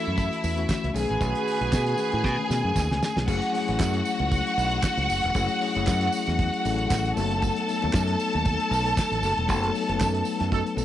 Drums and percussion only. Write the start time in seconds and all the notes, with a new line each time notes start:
0.05 closed hi-hat
0.17 kick, closed hi-hat, tambourine
0.33 closed hi-hat
0.44 open hi-hat, tambourine
0.58 closed hi-hat
0.69 kick, snare, clap, tambourine
0.84 closed hi-hat
0.96 open hi-hat, tambourine
1.09 closed hi-hat
1.21 kick, closed hi-hat, tambourine
1.35 closed hi-hat
1.48 open hi-hat, tambourine
1.62 closed hi-hat
1.73 kick, snare, clap, tambourine
1.87 closed hi-hat
1.98 open hi-hat, tambourine
2.12 closed hi-hat
2.24 kick, snare
2.51 snare, tambourine
2.76 kick, snare, tambourine
2.91 snare
3.03 snare, tambourine
3.17 snare
3.28 kick, crash, tambourine
3.42 closed hi-hat
3.55 open hi-hat
3.68 closed hi-hat
3.80 kick, snare, clap, tambourine
3.94 closed hi-hat
4.05 open hi-hat, tambourine
4.19 closed hi-hat
4.32 kick, closed hi-hat, tambourine
4.47 closed hi-hat
4.58 open hi-hat, tambourine
4.71 closed hi-hat
4.83 kick, snare, clap, tambourine
4.98 closed hi-hat
5.10 open hi-hat, tambourine
5.23 closed hi-hat
5.35 kick, closed hi-hat, tambourine
5.49 closed hi-hat
5.62 open hi-hat
5.75 closed hi-hat
5.87 kick, snare, clap, tambourine
6.01 closed hi-hat
6.12 open hi-hat, tambourine
6.26 snare, closed hi-hat
6.39 kick, closed hi-hat
6.54 closed hi-hat
6.65 open hi-hat, tambourine
6.78 closed hi-hat
6.90 kick, snare, clap, tambourine
7.05 closed hi-hat
7.17 open hi-hat, tambourine
7.31 closed hi-hat
7.42 kick, closed hi-hat, tambourine
7.56 closed hi-hat
7.69 open hi-hat, tambourine
7.82 closed hi-hat
7.93 kick, snare, clap, tambourine
8.08 closed hi-hat
8.20 open hi-hat, tambourine
8.33 closed hi-hat
8.45 kick, closed hi-hat, tambourine
8.60 closed hi-hat
8.72 open hi-hat, tambourine
8.86 closed hi-hat
8.97 kick, snare, clap, tambourine
9.12 closed hi-hat
9.23 open hi-hat, tambourine
9.38 closed hi-hat
9.49 kick, closed hi-hat, tambourine
9.63 closed hi-hat
9.75 open hi-hat, tambourine
9.89 closed hi-hat
10.00 kick, snare, clap, tambourine
10.14 closed hi-hat
10.25 open hi-hat, tambourine
10.40 snare, closed hi-hat
10.52 kick, closed hi-hat
10.67 closed hi-hat
10.78 open hi-hat, tambourine